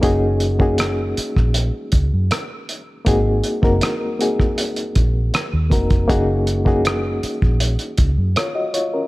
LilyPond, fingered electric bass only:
\new Staff \with { instrumentName = "Fingered electric bass" } { \clef bass \time 4/4 \key fis \major \tempo 4 = 79 fis,,4. r16 ais,,8 r16 cis,16 fis,16 r4 | gis,,8 r16 fis,,16 r4. ais,,8 r16 dis,16 eis,,8 | fis,,4. r16 ais,,8 r16 cis,16 fis,16 r4 | }